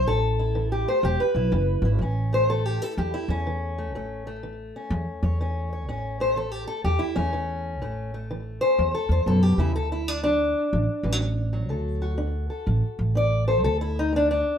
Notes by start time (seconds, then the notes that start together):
Already playing: E4
0.07 A1 A2 A4
0.39 E4
0.55 E3
0.72 G4
0.88 A3 C5
1.03 E1 E2 G4
1.20 B4
1.35 B1 E4
1.52 F#1 E3
1.82 G#1 E4
1.99 A1 A2 C#4
2.33 A3 C5
2.50 E3 A4
2.66 G4
2.82 E4 A4
2.97 E2 G4
3.14 E4
3.28 E2 C#4
3.47 E3
3.78 A3
3.93 A1 A2 A3
4.27 A3
4.43 E3
4.76 C#4
4.90 E2
5.23 E2 C#5
5.40 E3 C#4
5.73 C#5
5.88 A1 A2 C#4
6.20 A3 C5
6.36 E3 A4
6.52 G4
6.67 A4
6.84 E2 G4
6.99 E4
7.16 E2 A3 C#4
7.33 E3 A3
7.81 A1 A2 A3
8.14 A3
8.31 E3
8.61 C#4 C5
8.78 E2
8.95 A4
9.09 E2 C5
9.26 F#2 B2 A4
9.43 G4
9.58 E2 C#3 E4
9.75 D2 D3 A4
9.92 E4
10.08 D4
10.23 F#3 D4
10.73 A1 A2
11.03 A1 E3
11.12 F#3
11.21 F#3
11.53 F#3
11.69 D2 D3 A4
12.02 F#4
12.18 D4
12.50 A4
12.66 A1 A2
12.99 A1
13.15 D4 D5
13.48 A4 C5
13.64 D2 D3 A4
13.81 E4
13.99 D#4
14.13 A3 D4
14.31 D4